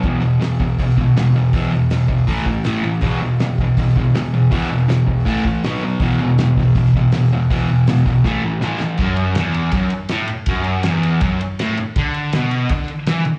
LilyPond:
<<
  \new Staff \with { instrumentName = "Distorted electric guitar" } { \clef bass \time 4/4 \key a \major \tempo 4 = 161 <e, b, e>8 <e, b,>8 <e, b,>8 <e, b,>8 <e, b,>8 <e, b,>8 <e, b,>8 <e, b,>8 | <e, b, e>8 <e, b,>8 <e, b,>8 <e, b,>8 <a, e a>8 <a, e>8 <a, e a>8 <a, e>8 | <e, b, e>8 <e, b,>8 <e, b,>8 <e, b,>8 <e, b,>8 <e, b,>8 <e, b,>8 <e, b,>8 | <e, b, e>8 <e, b,>8 <e, b,>8 <e, b,>8 <a, e a>8 <a, e>8 <b, fis b>8 <b, fis>8 |
<e, b, e>8 <e, b,>8 <e, b,>8 <e, b,>8 <e, b,>8 <e, b,>8 <e, b,>8 <e, b,>8 | <e, b, e>8 <e, b,>8 <e, b,>8 <e, b,>8 <a, e a>8 <a, e>8 <a, e a>8 <a, e>8 | fis,4 e,4 fis,8 r8 a,8 r8 | fis,4 e,4 fis,8 r8 a,8 r8 |
d4 b,4 d8 r8 e8 r8 | }
  \new DrumStaff \with { instrumentName = "Drums" } \drummode { \time 4/4 <hho bd>4 <hho sn>8 bd8 <hho bd>16 sn16 bd8 <hho sn>4 | <hho bd>4 <hho sn>8 bd8 <hho bd>16 sn16 bd8 <hho sn>4 | <hho bd>4 <hho sn>8 bd8 <hho bd>16 sn16 bd8 <hho sn>4 | <hho bd>4 <hho sn>8 bd8 <hho bd>8 bd8 <hho sn>4 |
<hho bd>4 <hho sn>8 bd8 <hho bd>16 sn16 bd8 <hho sn>4 | <hho bd>4 <hho sn>8 bd8 <bd sn>4 sn8 sn8 | <cymc bd>8 cymr8 <cymr sn>8 cymr8 <bd cymr>8 cymr8 <cymr sn>8 cymr8 | <bd cymr>8 cymr8 <cymr sn>8 cymr8 <bd cymr>8 cymr8 <cymr sn>8 cymr8 |
<bd cymr>8 cymr8 <cymr sn>8 cymr8 <bd cymr>8 cymr8 <cymr sn>8 cymr8 | }
>>